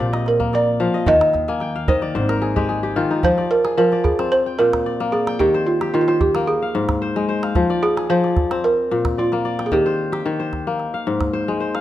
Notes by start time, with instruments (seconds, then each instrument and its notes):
Already playing: kora C4 F4 G4, balafon C5
0.00 upright bass A#1, kora A#2 D5
0.13 kora D#5, calabash click
0.26 balafon A#4, calabash click
0.40 kora A#3, calabash thump
0.53 kora D5, balafon D5, calabash click
0.80 kora F3 F5
0.94 kora D#5
1.06 upright bass D#2, kora D#3, balafon D#5, calabash thump, calabash click
1.21 calabash click
1.34 upright bass D#2, calabash click
1.48 kora A#3 G#5, calabash click
1.60 kora G5, calabash click
1.76 kora F5
1.88 kora D#3 D#5, balafon C5, calabash thump, calabash click
2.02 kora D5, calabash click
2.15 upright bass G#1, kora G#2 C5
2.29 kora A#4, calabash click
2.42 kora G#4, calabash click
2.56 kora G#3 G4, calabash thump
2.69 kora G#4
2.83 kora G4
2.96 kora D#3 F4
3.11 kora D#4
3.23 kora F3, balafon C5, calabash thump, calabash click
3.38 kora D5, calabash click
3.51 balafon A#4
3.65 kora G#4, calabash click
3.77 kora F3, balafon A#4
3.92 kora D5, calabash click
4.04 balafon G#4, calabash thump, calabash click
4.19 kora C4, calabash click
4.32 balafon C5
4.46 kora G5
4.59 kora A#2, balafon A#4
4.73 calabash thump, calabash click
4.86 kora D5
5.00 kora A#3, calabash click
5.12 balafon G#4, kora D5
5.27 kora G5, calabash click
5.39 kora D#3, balafon G4, calabash thump, calabash click
5.54 kora C5, calabash click
5.66 balafon F4
5.81 kora G4, calabash click
5.94 kora D#3, balafon F4
6.01 balafon F4
6.08 balafon F4, kora C5, calabash click
6.21 balafon G4, calabash thump, calabash click
6.35 kora A#3, calabash click
6.47 balafon G#4
6.62 kora F5
6.75 kora G#2
6.89 calabash thump, calabash click
7.02 kora C5
7.16 kora G#3, calabash click
7.29 kora C5
7.43 kora F5, calabash click
7.55 kora F3, calabash thump, calabash click
7.70 kora D5, calabash click
7.83 balafon G#4
7.97 kora G#4, calabash click
8.10 kora F3, balafon C5
8.24 kora D5, calabash click
8.37 calabash thump, calabash click
8.51 kora C4, calabash click
8.64 balafon A#4
8.91 kora A#2
9.05 calabash thump, calabash click
9.18 balafon F4, kora D5
9.32 kora A#3, calabash click
9.45 kora D5
9.59 kora G5, calabash click
9.66 balafon G#4
9.72 kora D#3, balafon G4, calabash thump
9.86 kora C5, calabash click
10.12 kora G4, calabash click
10.26 kora D#3
10.39 kora C5
10.53 calabash thump, calabash click
10.67 kora A#3
10.80 calabash click
10.94 kora F5
11.07 kora G#2
11.21 calabash thump, calabash click
11.33 kora C5
11.48 kora G#3
11.60 kora C5
11.75 kora F5, calabash click